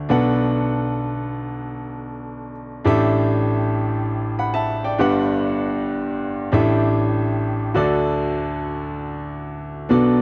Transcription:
grand piano
0.09 B1 B2 D4 A4 B4 F#5
2.84 A1 A2 D4 G4 A4 E5
4.39 F#5 B5
4.54 E5 A5
4.84 D5 G5
4.98 G1 G2 D4 G4 B4 F#5
6.52 A1 A2 D4 G4 A4 E5
7.74 D2 D3 F#4 A4 D5
9.89 B1 B2 B3 D4 F#4 A4 D5

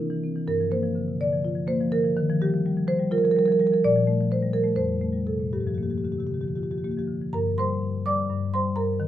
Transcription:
marimba
Already playing: C3 D4
0.10 E3
0.24 C4
0.36 E3
0.47 G2 A#4
0.60 F3
0.71 A#3 C5
0.83 F3
0.95 D3
1.08 C3
1.21 D3 D5
1.33 F3
1.45 F4
1.55 F3
1.67 A#3 C5
1.81 F3
1.92 D3 A#4
2.04 F3
2.17 D#3
2.30 F3
2.42 G3 G4
2.54 F3
2.66 G3
2.77 F3
2.88 F3 C5
2.99 G3
3.11 F4 A#4
3.18 A#4
3.24 F3 A#4
3.31 A#4
3.36 G3 A#4
3.46 F3 A#4
3.52 A#4
3.60 G3 A#4
3.67 A#4
3.72 F3 A#4
3.84 A#2 D5
3.96 F3
4.07 A3
4.21 F3
4.31 A3 C5
4.42 G3
4.53 F3 A#4
4.64 A3
4.76 F2 C5
4.89 G3
5.01 A3
5.13 G3
5.26 C3 A4
5.40 A#2
5.53 G2 G4
5.61 G4
5.66 F3 G4
5.74 A#3 G4
5.83 G4
5.90 F3 G4
5.98 G4
6.04 D3 G4
6.12 G4
6.18 C3 G4
6.27 G4
6.31 D3 G4
6.41 F3 G4
6.48 G4
6.56 F4 G4
6.63 G4
6.71 F3 G4
6.78 G4
6.84 A#3 G4
6.91 G4
6.97 F3 G4
7.08 D3
7.22 F3
7.33 G2 A#4 A#5
7.58 G3 C5 C6
7.82 G2
8.06 G3 D5 D6
8.29 G2
8.54 G3 C5 C6
8.76 G2 A#4 A#5
9.00 D#3

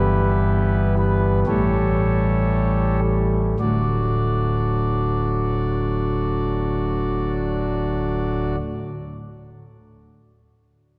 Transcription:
pipe organ
Already playing: G1 G2 E3 G3 B3 E4 G4 B4
0.98 B4
1.47 A1 A2 E3 G3 A3 G4 A4 C#5
3.59 D1 D2 A2 F#3 A3 D4 F#4 D5

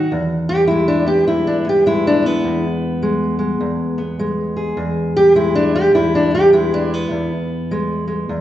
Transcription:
steel-string acoustic guitar
Already playing: F#4
0.12 E2
0.49 G4
0.68 G#3 E4
0.88 D4
1.06 B3 G4
1.28 E2 E4
1.47 D4
1.65 B3
1.69 G4
1.86 G#3 E4
2.07 D4
2.23 B3
2.44 E2
3.02 G#3
3.39 G#3
3.61 E2
3.98 B3
4.19 G#3
4.57 G#4
4.77 E2
5.17 G4
5.35 G#3 E4
5.55 D4
5.75 G4
5.94 E2 E4
6.15 D4
6.31 B3 G4
6.53 G#3 E4
6.74 D4
6.93 B3
7.11 E2
7.71 G#3
8.08 G#3
8.29 E2

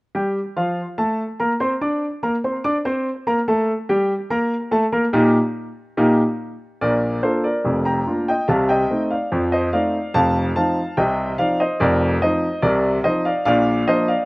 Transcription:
grand piano
0.15 G3 G4 G5
0.56 F3 F4 F5
0.98 A3 A4 A5
1.40 A#3 A#4 A#5
1.60 C4 C5 C6
1.81 D4 D5 D6
2.23 A#3 A#4 A#5
2.44 C4 C5 C6
2.64 D4 D5 D6
2.85 C4 C5 C6
3.27 A#3 A#4 A#5
3.48 A3 A4 A5
3.89 G3 G4 G5
4.30 A#3 A#4 A#5
4.71 A3 A4 A5
4.92 A#3 A#4 A#5
5.13 A#2 A#3 D#4 G4
5.97 A#2 A#3 D#4 G4
6.81 A#1 A#2 A#4 D5
7.23 A#3 D4 F4 A4 C5
7.44 A#4 D5
7.65 F1 F2
7.85 G5 A#5
8.07 A#3 D4 F4
8.28 D#5 G5
8.48 C2 C3 F5 A5
8.69 D#5 G5
8.90 A3 C4 D#4
9.11 D5 F5
9.32 F2 F3
9.52 C5 D#5
9.73 A3 C4 D#4 D5 F5
10.14 F1 F2 F5 A5
10.56 F3 C4 D#4 F5 A5
10.97 C2 C3 D#5 G5
11.38 F3 C4 D#4 D5 F5
11.60 C5 D#5
11.80 F1 F2 A#4 D5
12.22 F3 C4 D#4 C5 D#5
12.62 C2 C3 A#4 D5
13.04 F3 C4 D#4 C5 D#5
13.25 D5 F5
13.45 A#1 A#2 D5 F5
13.88 F3 A#3 D4 C5 D#5
14.08 D5 F5

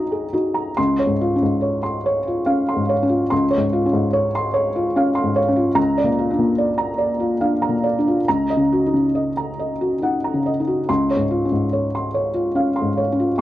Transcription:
felt piano
Already playing: C#2 D#4 F#4 C#5 D#5 A#5
0.12 G#4
0.33 D#4 F#4
0.54 A#5
0.77 C#2 C6
0.99 C#5
1.07 G#2
1.21 F4
1.36 C#4
1.43 G#2
1.62 C#5
1.83 C6
2.06 C#5
2.27 F4
2.46 C#4 F5
2.68 C6
2.76 G#2
2.89 C#5
3.03 C#4
3.09 F4
3.30 C#2 C6
3.51 C#5
3.58 G#2
3.73 F4
3.86 C#4
3.93 G#2
4.13 C#5
4.35 C6
4.54 C#5
4.76 F4
4.96 C#4 F5
5.15 C6
5.24 G#2
5.36 C#5
5.48 C#4
5.56 F4
5.75 C#2 A#5
5.97 D5
6.04 A#2
6.18 F4
6.30 D4
6.38 A#2
6.58 D5
6.78 A#5
6.98 D5
7.20 F4
7.41 D4 F5
7.62 A#5
7.69 A#2
7.84 D5
7.99 D4
8.08 F4
8.28 C#2 A#5
8.50 D#5
8.57 C#3
8.73 F#4
8.87 D#4
8.94 C#3
9.15 D#5
9.37 A#5
9.59 D#5
9.81 F#4
10.02 D#4 F#5
10.24 A#5
10.34 C#3
10.46 D#5
10.60 D#4
10.67 F#4
10.89 C#2 C6
11.10 C#5
11.16 G#2
11.30 F4
11.45 C#4
11.52 G#2
11.73 C#5
11.95 C6
12.14 C#5
12.34 F4
12.55 C#4 F5
12.76 C6
12.81 G#2
12.97 C#5
13.12 C#4
13.20 F4

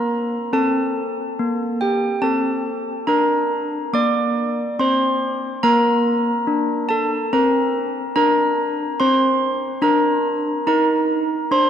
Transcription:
handbells
Already playing: A#3 A#4 A#5
0.53 C4 A4 A5
1.39 A#3
1.81 G4 G5
2.22 C4 A4 A5
3.07 D4 A#4 A#5
3.94 A#3 D5 D6
4.79 C4 C5 C6
5.63 A#3 A#4 A#5
6.47 D4
6.89 A4 A5
7.33 C4 A#4 A#5
8.16 D4 A#4 A#5
9.00 C4 C5 C6
9.82 D4 A#4 A#5
10.67 D#4 A#4 A#5
11.51 D4 C5 C6

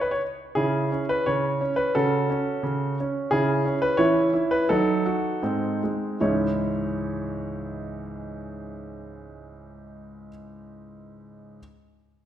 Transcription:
grand piano
0.01 B4
0.11 C#5
0.55 C#3 C#4 E4 G#4
0.92 C#4
1.09 B4
1.26 C#3 C#5
1.61 C#4
1.76 B4
1.95 C#3 C#4 F#4 A4
2.30 C#4
2.63 C#3
3.00 C#4
3.31 C#3 C#4 E4 G#4
3.66 C#4
3.82 B4
3.97 E3 C#4 E4 C#5
4.34 E4
4.51 B4
4.69 F#3 D#4 A4
5.06 F#4
5.42 G#2 C4 D#4
5.84 G#3
6.20 C#2 G#2 E3 G#3 C#4 E4 C#5

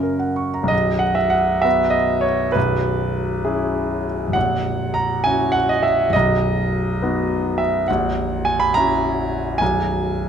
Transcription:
grand piano
Already playing: F#2 C#3
0.03 A#4
0.19 F#5
0.36 C#6
0.54 A#5
0.63 B1
0.68 B0 D#5
0.99 F#5
1.15 E5
1.30 F#5
1.62 B3 F#4 B4 E5
1.90 D#5
2.21 C#5
2.52 B0 B1 B4
3.45 C#4 E4 G#4
4.28 A#0
4.33 A#1 F#5
4.94 A#5
5.24 C#4 E4 F#4 G#5
5.52 F#5
5.69 D#5
5.83 E5
6.09 B0
6.13 B1 D#5
7.02 B3 D#4 F#4
7.58 E5
7.88 A#0 A#1 F#5
8.45 G#5
8.60 B5
8.74 C#4 E4 F#4 A#5
9.58 B0 B1 G#5

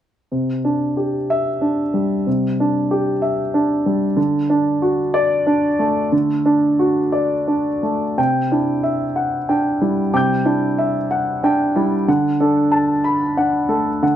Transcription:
grand piano
0.32 C3
0.65 D4
0.97 G4
1.30 E5
1.61 D4
1.94 G3
2.27 C3
2.60 D4
2.91 G4
3.22 E5
3.54 D4
3.86 G3
4.16 D3
4.50 D4
4.82 F#4
5.14 D5
5.47 D4
5.79 A3
6.12 D3
6.46 D4
6.79 F#4
7.12 D5
7.48 D4
7.83 A3
8.18 C3 G5
8.52 D4 E4
8.83 E5
9.16 F#5
9.49 D4 G5
9.81 G3 E4
10.14 C3 G5 D6 G6
10.45 D4 E4
10.78 E5
11.11 F#5
11.43 D4 G5
11.76 G3 E4
12.08 D3 F#5
12.40 D4 A4
12.72 A5
13.04 B5
13.37 D4 F#5
13.69 A3 A4
14.02 D3 F#5

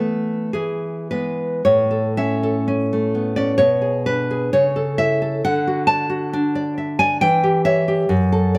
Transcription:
nylon-string guitar
Already playing: E3 A3 B3 B4
0.53 E3 G#4
1.11 G#3 B3 B4
1.65 A2 C#5
1.91 A4
2.17 C#4 E5
2.43 A4
2.68 C#4
2.93 A3
3.15 B3
3.36 C#4 D5
3.58 B2 C#5
3.81 G#4
4.06 D4 B4
4.31 G#4
4.53 C#3 C#5
4.76 A4
4.98 E4 E5
5.22 A4
5.45 D3 F#5
5.67 F#4
5.87 D5 A5
6.10 F#4
6.33 D4
6.55 D5
6.78 E5
6.99 D5 G#5
7.21 E3 G5
7.43 G4
7.65 C#5 E5
7.88 G4
8.09 F#2
8.32 A4
8.55 D5

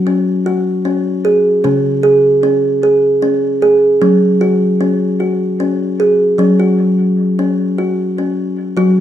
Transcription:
kalimba
Already playing: F#3
0.07 C#4
0.46 F#4
0.85 C#4
1.25 G#4
1.64 C#3 C#4
2.03 G#4
2.43 C#4
2.83 G#4
3.22 C#4
3.62 G#4
4.02 F#3 C#4
4.41 F#4
4.81 C#4
5.20 F#4
5.60 C#4
6.00 G#4
6.38 F#3 C#4
6.60 F#4
7.39 C#4
7.78 F#4
8.18 C#4
8.77 F#3 F#4

